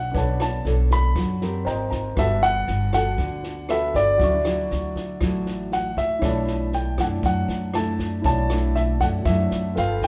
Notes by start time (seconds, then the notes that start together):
Already playing: B1 F#3 D4 A4 B4 C#5 F#5 A5
0.11 B1 B3 D4 A4 B4 C#5, kick, snare, shaker
0.16 C#5 A5
0.39 A5, cross-stick, snare, shaker
0.64 B1 D4 A4 C#5, snare, shaker
0.90 B5, kick, snare, shaker
1.15 F#2 F#3, kick, cross-stick, snare, shaker
1.41 C4 G4 A#4, snare, shaker
1.65 G#1 C5 D#5 G5 A#5, snare, shaker
1.91 G#1 A#5, kick, snare, shaker
2.15 G1 G3 B3 F#4 A4 B4 E5 F#5 A5, kick, cross-stick, snare, shaker
2.42 F#5, snare, shaker
2.67 G1, snare, shaker
2.93 B3 F#4 A4 F#5, kick, cross-stick, snare, shaker
3.18 D2 D3, kick, snare, shaker
3.44 snare, shaker
3.69 B3 F#4 A4 B4 E5 F#5 B5, cross-stick, snare, shaker
3.94 G1 D5, kick, snare, shaker
4.18 D2 D3 F#3 C#4 D4 E4 F#4 E5, kick, snare, shaker
4.24 C#6
4.45 F#3 E4, cross-stick, snare, shaker
4.71 D2, snare, shaker
4.96 kick, snare, shaker
5.21 A1 A2 F#3 E4, kick, cross-stick, snare, shaker
5.46 snare, shaker
5.72 F#5, snare, shaker
5.97 D2 E5, kick, snare, shaker
6.19 B1 B2 A3 E4 C#5 D5, kick, cross-stick, snare
6.23 D4 E4 A5, shaker
6.47 snare, shaker
6.72 G5, snare, shaker
6.98 F#2 A3 D4 E4 F#5, kick, cross-stick, snare, shaker
7.23 F#2 F#3 F#5, kick, snare, shaker
7.48 F#2, snare, shaker
7.74 A3 D4 E4 A5, cross-stick, snare, shaker
7.99 kick, snare, shaker
8.22 B1 E4 C#5 A5, kick, snare, shaker
8.26 B2 D5 A5
8.50 A3 D4 E4, cross-stick, snare, shaker
8.75 E5, snare, shaker
9.00 F#2 A3 D4 E4 F#5, kick, snare, shaker
9.25 F#2 F#3 A3 D4 E4 E5, kick, cross-stick, snare, shaker
9.51 snare, shaker
9.75 G1 B3 F4 A4 B4 F5 G5, snare, shaker
10.01 G5, kick, snare, shaker